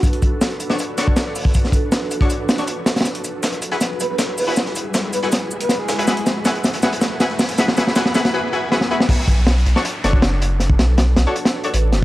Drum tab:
CC |--------------------------------|--------------------------------|--------------------------------|--------------------------------|
HH |x-x-x---x-x-x---x---x---x---o---|x---x---x---x---x---x-x-x---x-xx|x-x-x---x-x-x---x---x---x---o---|x---x---x---x---x-----x-x---x-x-|
SH |x---x---x---x---x---x---x---x---|x---x---x---x---x---x---x---x---|x---x---x---x---x---x---x---x---|x---x---x---x---x---x---x---x---|
SD |--------o-----o-----o---o-------|--o-----o-----o-----o-o-----o-oo|o-------o-----o-o-------o-------|o-o-----o-----o-o-------o---o---|
BD |o---o-----------------o-------o-|o---o---------o-----------------|--------------------------------|--------------------------------|

CC |--------------------------------|--------------------------------|x-------------------------------|--------------------------------|
HH |x-x-x---x-x-x-x-x-x-x---x---o-x-|x---x---x---x-x-----------------|x---x---x-x-x---x---x---x---x---|x---x---x---x---x-x---x-x---x---|
SH |x---x---x---x---x---x---x---x---|x---x---x---x-------------------|--------------------------------|--------------------------------|
SD |o---o---o---o-o-o---o---o-o-o---|o-o-o-o-o-o-o-o---------o-o---o-|--------o-----o-----o---o-------|o---o---o---o-----o---------o---|
BD |--------------------------------|--------------------------------|o---o-----------------o---------|--o-----------------------------|